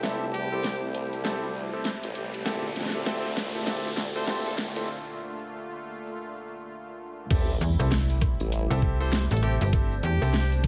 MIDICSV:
0, 0, Header, 1, 10, 480
1, 0, Start_track
1, 0, Tempo, 606061
1, 27, Time_signature, 4, 2, 24, 8
1, 8453, End_track
2, 0, Start_track
2, 0, Title_t, "Ambient pad"
2, 0, Program_c, 0, 92
2, 0, Note_on_c, 0, 67, 72
2, 0, Note_on_c, 0, 72, 93
2, 0, Note_on_c, 0, 81, 79
2, 1939, Note_on_c, 0, 57, 84
2, 1947, Note_off_c, 0, 81, 0
2, 2290, Note_on_c, 0, 74, 87
2, 2917, Note_off_c, 0, 72, 0
2, 3379, Note_off_c, 0, 67, 0
2, 3863, Note_off_c, 0, 57, 0
2, 3865, Note_off_c, 0, 74, 0
2, 5789, Note_on_c, 0, 67, 84
2, 5967, Note_on_c, 0, 72, 84
2, 6925, Note_on_c, 0, 81, 95
2, 8453, Note_off_c, 0, 67, 0
2, 8453, Note_off_c, 0, 72, 0
2, 8453, Note_off_c, 0, 81, 0
2, 8453, End_track
3, 0, Start_track
3, 0, Title_t, "Harmonica"
3, 0, Program_c, 1, 22
3, 264, Note_on_c, 1, 67, 98
3, 653, Note_off_c, 1, 67, 0
3, 3293, Note_on_c, 1, 72, 89
3, 3353, Note_off_c, 1, 72, 0
3, 3385, Note_on_c, 1, 72, 78
3, 3480, Note_off_c, 1, 72, 0
3, 3534, Note_on_c, 1, 69, 91
3, 3608, Note_off_c, 1, 69, 0
3, 7136, Note_on_c, 1, 72, 87
3, 7194, Note_off_c, 1, 72, 0
3, 7231, Note_on_c, 1, 72, 76
3, 7323, Note_off_c, 1, 72, 0
3, 7377, Note_on_c, 1, 69, 93
3, 7449, Note_off_c, 1, 69, 0
3, 7468, Note_on_c, 1, 67, 90
3, 7561, Note_off_c, 1, 67, 0
3, 7615, Note_on_c, 1, 67, 77
3, 7674, Note_off_c, 1, 67, 0
3, 7950, Note_on_c, 1, 67, 99
3, 8335, Note_off_c, 1, 67, 0
3, 8453, End_track
4, 0, Start_track
4, 0, Title_t, "Grand piano"
4, 0, Program_c, 2, 0
4, 25, Note_on_c, 2, 60, 89
4, 25, Note_on_c, 2, 64, 82
4, 25, Note_on_c, 2, 67, 78
4, 25, Note_on_c, 2, 69, 95
4, 181, Note_off_c, 2, 64, 0
4, 182, Note_off_c, 2, 60, 0
4, 182, Note_off_c, 2, 67, 0
4, 182, Note_off_c, 2, 69, 0
4, 413, Note_on_c, 2, 60, 71
4, 413, Note_on_c, 2, 64, 65
4, 413, Note_on_c, 2, 67, 66
4, 413, Note_on_c, 2, 69, 80
4, 520, Note_off_c, 2, 60, 0
4, 520, Note_off_c, 2, 64, 0
4, 520, Note_off_c, 2, 67, 0
4, 520, Note_off_c, 2, 69, 0
4, 985, Note_on_c, 2, 60, 88
4, 985, Note_on_c, 2, 64, 81
4, 985, Note_on_c, 2, 67, 81
4, 985, Note_on_c, 2, 69, 98
4, 1141, Note_off_c, 2, 60, 0
4, 1142, Note_off_c, 2, 64, 0
4, 1142, Note_off_c, 2, 67, 0
4, 1142, Note_off_c, 2, 69, 0
4, 1372, Note_on_c, 2, 67, 65
4, 1372, Note_on_c, 2, 69, 78
4, 1373, Note_on_c, 2, 60, 73
4, 1373, Note_on_c, 2, 64, 66
4, 1479, Note_off_c, 2, 67, 0
4, 1480, Note_off_c, 2, 60, 0
4, 1480, Note_off_c, 2, 64, 0
4, 1480, Note_off_c, 2, 69, 0
4, 1944, Note_on_c, 2, 64, 85
4, 1945, Note_on_c, 2, 60, 90
4, 1945, Note_on_c, 2, 67, 85
4, 1945, Note_on_c, 2, 69, 102
4, 2101, Note_off_c, 2, 64, 0
4, 2101, Note_off_c, 2, 67, 0
4, 2101, Note_off_c, 2, 69, 0
4, 2102, Note_off_c, 2, 60, 0
4, 2332, Note_on_c, 2, 67, 70
4, 2333, Note_on_c, 2, 60, 75
4, 2333, Note_on_c, 2, 64, 69
4, 2333, Note_on_c, 2, 69, 81
4, 2411, Note_off_c, 2, 60, 0
4, 2411, Note_off_c, 2, 64, 0
4, 2411, Note_off_c, 2, 67, 0
4, 2411, Note_off_c, 2, 69, 0
4, 2425, Note_on_c, 2, 64, 88
4, 2425, Note_on_c, 2, 67, 87
4, 2426, Note_on_c, 2, 60, 96
4, 2426, Note_on_c, 2, 69, 105
4, 2582, Note_off_c, 2, 60, 0
4, 2582, Note_off_c, 2, 64, 0
4, 2582, Note_off_c, 2, 67, 0
4, 2582, Note_off_c, 2, 69, 0
4, 2811, Note_on_c, 2, 69, 81
4, 2812, Note_on_c, 2, 60, 74
4, 2812, Note_on_c, 2, 64, 67
4, 2813, Note_on_c, 2, 67, 68
4, 2890, Note_off_c, 2, 69, 0
4, 2891, Note_off_c, 2, 60, 0
4, 2891, Note_off_c, 2, 64, 0
4, 2891, Note_off_c, 2, 67, 0
4, 2904, Note_on_c, 2, 60, 92
4, 2904, Note_on_c, 2, 64, 87
4, 2904, Note_on_c, 2, 67, 84
4, 2904, Note_on_c, 2, 69, 101
4, 3061, Note_off_c, 2, 60, 0
4, 3061, Note_off_c, 2, 64, 0
4, 3061, Note_off_c, 2, 67, 0
4, 3061, Note_off_c, 2, 69, 0
4, 3292, Note_on_c, 2, 60, 74
4, 3292, Note_on_c, 2, 64, 67
4, 3292, Note_on_c, 2, 67, 68
4, 3292, Note_on_c, 2, 69, 81
4, 3371, Note_off_c, 2, 60, 0
4, 3371, Note_off_c, 2, 64, 0
4, 3371, Note_off_c, 2, 67, 0
4, 3371, Note_off_c, 2, 69, 0
4, 3385, Note_on_c, 2, 60, 100
4, 3385, Note_on_c, 2, 64, 91
4, 3385, Note_on_c, 2, 67, 89
4, 3385, Note_on_c, 2, 69, 110
4, 3541, Note_off_c, 2, 69, 0
4, 3542, Note_off_c, 2, 60, 0
4, 3542, Note_off_c, 2, 64, 0
4, 3542, Note_off_c, 2, 67, 0
4, 3772, Note_on_c, 2, 60, 76
4, 3772, Note_on_c, 2, 64, 68
4, 3772, Note_on_c, 2, 67, 66
4, 3773, Note_on_c, 2, 69, 81
4, 3851, Note_off_c, 2, 60, 0
4, 3851, Note_off_c, 2, 64, 0
4, 3851, Note_off_c, 2, 67, 0
4, 3851, Note_off_c, 2, 69, 0
4, 5786, Note_on_c, 2, 60, 94
4, 5786, Note_on_c, 2, 64, 86
4, 5786, Note_on_c, 2, 67, 84
4, 5787, Note_on_c, 2, 69, 103
4, 5942, Note_off_c, 2, 60, 0
4, 5942, Note_off_c, 2, 64, 0
4, 5942, Note_off_c, 2, 67, 0
4, 5942, Note_off_c, 2, 69, 0
4, 6173, Note_on_c, 2, 60, 74
4, 6173, Note_on_c, 2, 69, 85
4, 6174, Note_on_c, 2, 64, 70
4, 6174, Note_on_c, 2, 67, 69
4, 6280, Note_off_c, 2, 60, 0
4, 6280, Note_off_c, 2, 64, 0
4, 6280, Note_off_c, 2, 67, 0
4, 6280, Note_off_c, 2, 69, 0
4, 6894, Note_on_c, 2, 60, 99
4, 6894, Note_on_c, 2, 64, 91
4, 6894, Note_on_c, 2, 67, 91
4, 6894, Note_on_c, 2, 69, 108
4, 7098, Note_off_c, 2, 67, 0
4, 7098, Note_off_c, 2, 69, 0
4, 7099, Note_off_c, 2, 60, 0
4, 7099, Note_off_c, 2, 64, 0
4, 7131, Note_on_c, 2, 60, 92
4, 7131, Note_on_c, 2, 67, 82
4, 7131, Note_on_c, 2, 69, 104
4, 7132, Note_on_c, 2, 64, 86
4, 7239, Note_off_c, 2, 60, 0
4, 7239, Note_off_c, 2, 64, 0
4, 7239, Note_off_c, 2, 67, 0
4, 7239, Note_off_c, 2, 69, 0
4, 7464, Note_on_c, 2, 67, 85
4, 7465, Note_on_c, 2, 60, 91
4, 7465, Note_on_c, 2, 64, 86
4, 7465, Note_on_c, 2, 69, 101
4, 7621, Note_off_c, 2, 60, 0
4, 7621, Note_off_c, 2, 67, 0
4, 7621, Note_off_c, 2, 69, 0
4, 7622, Note_off_c, 2, 64, 0
4, 7705, Note_on_c, 2, 60, 93
4, 7705, Note_on_c, 2, 64, 83
4, 7705, Note_on_c, 2, 67, 83
4, 7705, Note_on_c, 2, 69, 99
4, 7861, Note_off_c, 2, 60, 0
4, 7861, Note_off_c, 2, 64, 0
4, 7861, Note_off_c, 2, 67, 0
4, 7861, Note_off_c, 2, 69, 0
4, 8090, Note_on_c, 2, 60, 86
4, 8090, Note_on_c, 2, 64, 81
4, 8090, Note_on_c, 2, 67, 82
4, 8091, Note_on_c, 2, 69, 95
4, 8198, Note_off_c, 2, 64, 0
4, 8198, Note_off_c, 2, 67, 0
4, 8199, Note_off_c, 2, 60, 0
4, 8199, Note_off_c, 2, 69, 0
4, 8453, End_track
5, 0, Start_track
5, 0, Title_t, "Analog synth pad"
5, 0, Program_c, 3, 89
5, 0, Note_on_c, 3, 48, 85
5, 0, Note_on_c, 3, 55, 76
5, 0, Note_on_c, 3, 57, 77
5, 0, Note_on_c, 3, 64, 92
5, 1916, Note_off_c, 3, 48, 0
5, 1916, Note_off_c, 3, 55, 0
5, 1916, Note_off_c, 3, 57, 0
5, 1916, Note_off_c, 3, 64, 0
5, 1945, Note_on_c, 3, 46, 78
5, 1946, Note_on_c, 3, 65, 96
5, 1947, Note_on_c, 3, 50, 88
5, 1947, Note_on_c, 3, 57, 78
5, 5754, Note_off_c, 3, 46, 0
5, 5755, Note_off_c, 3, 50, 0
5, 5755, Note_off_c, 3, 57, 0
5, 5755, Note_off_c, 3, 65, 0
5, 5784, Note_on_c, 3, 64, 93
5, 5785, Note_on_c, 3, 55, 80
5, 5785, Note_on_c, 3, 57, 78
5, 5786, Note_on_c, 3, 48, 85
5, 7686, Note_off_c, 3, 64, 0
5, 7710, Note_on_c, 3, 62, 98
5, 8453, Note_off_c, 3, 48, 0
5, 8453, Note_off_c, 3, 55, 0
5, 8453, Note_off_c, 3, 57, 0
5, 8453, Note_off_c, 3, 62, 0
5, 8453, End_track
6, 0, Start_track
6, 0, Title_t, "FM bass"
6, 0, Program_c, 4, 39
6, 6028, Note_on_c, 4, 40, 94
6, 6151, Note_off_c, 4, 40, 0
6, 6174, Note_on_c, 4, 36, 94
6, 6630, Note_off_c, 4, 36, 0
6, 6894, Note_on_c, 4, 36, 101
6, 7350, Note_off_c, 4, 36, 0
6, 7374, Note_on_c, 4, 33, 96
6, 7590, Note_off_c, 4, 33, 0
6, 7614, Note_on_c, 4, 31, 100
6, 7932, Note_off_c, 4, 31, 0
6, 7946, Note_on_c, 4, 40, 96
6, 8070, Note_off_c, 4, 40, 0
6, 8094, Note_on_c, 4, 36, 95
6, 8453, Note_off_c, 4, 36, 0
6, 8453, End_track
7, 0, Start_track
7, 0, Title_t, "Wobble bass"
7, 0, Program_c, 5, 39
7, 0, Note_on_c, 5, 31, 95
7, 252, Note_off_c, 5, 31, 0
7, 268, Note_on_c, 5, 40, 100
7, 391, Note_off_c, 5, 40, 0
7, 415, Note_on_c, 5, 36, 95
7, 1111, Note_off_c, 5, 36, 0
7, 1133, Note_on_c, 5, 38, 99
7, 1350, Note_off_c, 5, 38, 0
7, 1613, Note_on_c, 5, 33, 94
7, 1691, Note_off_c, 5, 33, 0
7, 1706, Note_on_c, 5, 33, 93
7, 1932, Note_off_c, 5, 33, 0
7, 1947, Note_on_c, 5, 34, 97
7, 2172, Note_off_c, 5, 34, 0
7, 2187, Note_on_c, 5, 41, 101
7, 2311, Note_off_c, 5, 41, 0
7, 2334, Note_on_c, 5, 38, 96
7, 2790, Note_off_c, 5, 38, 0
7, 2814, Note_on_c, 5, 34, 100
7, 3030, Note_off_c, 5, 34, 0
7, 3053, Note_on_c, 5, 38, 98
7, 3510, Note_off_c, 5, 38, 0
7, 3532, Note_on_c, 5, 34, 97
7, 3749, Note_off_c, 5, 34, 0
7, 3771, Note_on_c, 5, 29, 98
7, 3865, Note_off_c, 5, 29, 0
7, 5787, Note_on_c, 5, 33, 95
7, 6012, Note_off_c, 5, 33, 0
7, 6657, Note_on_c, 5, 33, 101
7, 6872, Note_off_c, 5, 33, 0
7, 8453, End_track
8, 0, Start_track
8, 0, Title_t, "Riser"
8, 0, Program_c, 6, 103
8, 0, Note_on_c, 6, 60, 80
8, 3866, Note_off_c, 6, 60, 0
8, 8453, End_track
9, 0, Start_track
9, 0, Title_t, "Sub drop"
9, 0, Program_c, 7, 103
9, 5785, Note_on_c, 7, 60, 78
9, 7706, Note_off_c, 7, 60, 0
9, 8453, End_track
10, 0, Start_track
10, 0, Title_t, "Drums"
10, 28, Note_on_c, 9, 38, 59
10, 28, Note_on_c, 9, 42, 75
10, 107, Note_off_c, 9, 38, 0
10, 107, Note_off_c, 9, 42, 0
10, 269, Note_on_c, 9, 42, 64
10, 348, Note_off_c, 9, 42, 0
10, 508, Note_on_c, 9, 38, 63
10, 508, Note_on_c, 9, 42, 75
10, 587, Note_off_c, 9, 38, 0
10, 587, Note_off_c, 9, 42, 0
10, 748, Note_on_c, 9, 42, 61
10, 827, Note_off_c, 9, 42, 0
10, 895, Note_on_c, 9, 42, 36
10, 974, Note_off_c, 9, 42, 0
10, 987, Note_on_c, 9, 38, 69
10, 987, Note_on_c, 9, 42, 77
10, 1066, Note_off_c, 9, 38, 0
10, 1066, Note_off_c, 9, 42, 0
10, 1465, Note_on_c, 9, 38, 70
10, 1465, Note_on_c, 9, 42, 73
10, 1544, Note_off_c, 9, 38, 0
10, 1544, Note_off_c, 9, 42, 0
10, 1611, Note_on_c, 9, 42, 58
10, 1690, Note_off_c, 9, 42, 0
10, 1704, Note_on_c, 9, 42, 64
10, 1784, Note_off_c, 9, 42, 0
10, 1853, Note_on_c, 9, 42, 65
10, 1932, Note_off_c, 9, 42, 0
10, 1945, Note_on_c, 9, 38, 75
10, 1945, Note_on_c, 9, 42, 77
10, 2024, Note_off_c, 9, 38, 0
10, 2024, Note_off_c, 9, 42, 0
10, 2186, Note_on_c, 9, 38, 35
10, 2186, Note_on_c, 9, 42, 66
10, 2222, Note_off_c, 9, 38, 0
10, 2222, Note_on_c, 9, 38, 43
10, 2260, Note_off_c, 9, 38, 0
10, 2260, Note_on_c, 9, 38, 54
10, 2265, Note_off_c, 9, 42, 0
10, 2296, Note_off_c, 9, 38, 0
10, 2296, Note_on_c, 9, 38, 62
10, 2375, Note_off_c, 9, 38, 0
10, 2426, Note_on_c, 9, 38, 79
10, 2426, Note_on_c, 9, 42, 77
10, 2505, Note_off_c, 9, 38, 0
10, 2505, Note_off_c, 9, 42, 0
10, 2667, Note_on_c, 9, 38, 79
10, 2667, Note_on_c, 9, 42, 63
10, 2746, Note_off_c, 9, 38, 0
10, 2746, Note_off_c, 9, 42, 0
10, 2812, Note_on_c, 9, 42, 37
10, 2891, Note_off_c, 9, 42, 0
10, 2906, Note_on_c, 9, 38, 83
10, 2906, Note_on_c, 9, 42, 80
10, 2985, Note_off_c, 9, 38, 0
10, 2985, Note_off_c, 9, 42, 0
10, 3144, Note_on_c, 9, 38, 87
10, 3223, Note_off_c, 9, 38, 0
10, 3385, Note_on_c, 9, 38, 83
10, 3385, Note_on_c, 9, 42, 76
10, 3464, Note_off_c, 9, 38, 0
10, 3464, Note_off_c, 9, 42, 0
10, 3532, Note_on_c, 9, 42, 60
10, 3611, Note_off_c, 9, 42, 0
10, 3626, Note_on_c, 9, 38, 92
10, 3626, Note_on_c, 9, 42, 64
10, 3706, Note_off_c, 9, 38, 0
10, 3706, Note_off_c, 9, 42, 0
10, 3773, Note_on_c, 9, 42, 67
10, 3852, Note_off_c, 9, 42, 0
10, 5786, Note_on_c, 9, 36, 120
10, 5788, Note_on_c, 9, 42, 84
10, 5788, Note_on_c, 9, 49, 106
10, 5792, Note_on_c, 9, 54, 68
10, 5865, Note_off_c, 9, 36, 0
10, 5867, Note_off_c, 9, 42, 0
10, 5867, Note_off_c, 9, 49, 0
10, 5871, Note_off_c, 9, 54, 0
10, 5942, Note_on_c, 9, 54, 37
10, 6021, Note_off_c, 9, 54, 0
10, 6028, Note_on_c, 9, 42, 69
10, 6107, Note_off_c, 9, 42, 0
10, 6173, Note_on_c, 9, 54, 71
10, 6175, Note_on_c, 9, 37, 43
10, 6252, Note_off_c, 9, 54, 0
10, 6254, Note_off_c, 9, 37, 0
10, 6264, Note_on_c, 9, 54, 64
10, 6269, Note_on_c, 9, 38, 117
10, 6269, Note_on_c, 9, 42, 82
10, 6343, Note_off_c, 9, 54, 0
10, 6348, Note_off_c, 9, 38, 0
10, 6348, Note_off_c, 9, 42, 0
10, 6412, Note_on_c, 9, 54, 39
10, 6415, Note_on_c, 9, 42, 38
10, 6491, Note_off_c, 9, 54, 0
10, 6494, Note_off_c, 9, 42, 0
10, 6506, Note_on_c, 9, 36, 106
10, 6508, Note_on_c, 9, 37, 52
10, 6508, Note_on_c, 9, 42, 68
10, 6585, Note_off_c, 9, 36, 0
10, 6587, Note_off_c, 9, 37, 0
10, 6587, Note_off_c, 9, 42, 0
10, 6652, Note_on_c, 9, 54, 86
10, 6655, Note_on_c, 9, 42, 39
10, 6732, Note_off_c, 9, 54, 0
10, 6734, Note_off_c, 9, 42, 0
10, 6749, Note_on_c, 9, 42, 84
10, 6750, Note_on_c, 9, 54, 66
10, 6828, Note_off_c, 9, 42, 0
10, 6829, Note_off_c, 9, 54, 0
10, 6899, Note_on_c, 9, 54, 42
10, 6979, Note_off_c, 9, 54, 0
10, 6986, Note_on_c, 9, 36, 63
10, 7065, Note_off_c, 9, 36, 0
10, 7131, Note_on_c, 9, 54, 76
10, 7210, Note_off_c, 9, 54, 0
10, 7225, Note_on_c, 9, 54, 70
10, 7227, Note_on_c, 9, 38, 115
10, 7227, Note_on_c, 9, 42, 81
10, 7304, Note_off_c, 9, 54, 0
10, 7306, Note_off_c, 9, 38, 0
10, 7306, Note_off_c, 9, 42, 0
10, 7373, Note_on_c, 9, 42, 52
10, 7378, Note_on_c, 9, 54, 43
10, 7419, Note_off_c, 9, 42, 0
10, 7419, Note_on_c, 9, 42, 68
10, 7457, Note_off_c, 9, 54, 0
10, 7466, Note_off_c, 9, 42, 0
10, 7466, Note_on_c, 9, 37, 42
10, 7466, Note_on_c, 9, 42, 69
10, 7545, Note_off_c, 9, 37, 0
10, 7545, Note_off_c, 9, 42, 0
10, 7613, Note_on_c, 9, 42, 71
10, 7623, Note_on_c, 9, 54, 87
10, 7692, Note_off_c, 9, 42, 0
10, 7702, Note_off_c, 9, 54, 0
10, 7706, Note_on_c, 9, 36, 124
10, 7706, Note_on_c, 9, 42, 81
10, 7713, Note_on_c, 9, 54, 61
10, 7785, Note_off_c, 9, 36, 0
10, 7785, Note_off_c, 9, 42, 0
10, 7792, Note_off_c, 9, 54, 0
10, 7857, Note_on_c, 9, 54, 40
10, 7936, Note_off_c, 9, 54, 0
10, 7945, Note_on_c, 9, 42, 69
10, 8025, Note_off_c, 9, 42, 0
10, 8093, Note_on_c, 9, 37, 42
10, 8095, Note_on_c, 9, 54, 80
10, 8172, Note_off_c, 9, 37, 0
10, 8174, Note_off_c, 9, 54, 0
10, 8183, Note_on_c, 9, 54, 63
10, 8185, Note_on_c, 9, 38, 121
10, 8185, Note_on_c, 9, 42, 85
10, 8262, Note_off_c, 9, 54, 0
10, 8265, Note_off_c, 9, 38, 0
10, 8265, Note_off_c, 9, 42, 0
10, 8333, Note_on_c, 9, 42, 38
10, 8336, Note_on_c, 9, 54, 37
10, 8412, Note_off_c, 9, 42, 0
10, 8416, Note_off_c, 9, 54, 0
10, 8424, Note_on_c, 9, 42, 67
10, 8426, Note_on_c, 9, 36, 112
10, 8453, Note_off_c, 9, 36, 0
10, 8453, Note_off_c, 9, 42, 0
10, 8453, End_track
0, 0, End_of_file